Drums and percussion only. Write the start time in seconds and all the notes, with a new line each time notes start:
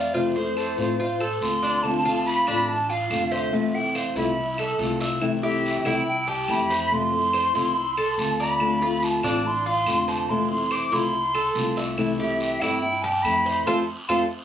0.14 long guiro
0.57 short guiro, claves
0.78 short guiro
1.00 long guiro
1.20 claves
1.42 short guiro
1.63 short guiro
1.84 long guiro, claves
2.26 short guiro
2.47 short guiro, claves
2.68 long guiro
3.10 short guiro, claves
3.32 short guiro
3.52 long guiro
3.95 short guiro, claves
4.16 short guiro
4.37 long guiro
4.58 claves
4.79 short guiro
5.00 short guiro
5.22 long guiro, claves
5.65 short guiro
5.85 short guiro, claves
6.07 long guiro
6.48 short guiro, claves
6.71 short guiro
6.92 long guiro
7.33 short guiro, claves
7.55 short guiro
7.77 long guiro
7.97 claves
8.19 short guiro
8.40 short guiro
8.60 long guiro, claves
9.02 short guiro
9.23 short guiro, claves
9.45 long guiro
9.86 short guiro, claves
10.08 short guiro
10.29 long guiro
10.71 short guiro, claves
10.92 short guiro
11.13 long guiro
11.35 claves
11.55 short guiro
11.76 short guiro
11.97 long guiro, claves
12.40 short guiro
12.61 short guiro, claves
12.83 long guiro
13.24 short guiro, claves
13.46 short guiro
13.67 long guiro, claves
14.09 claves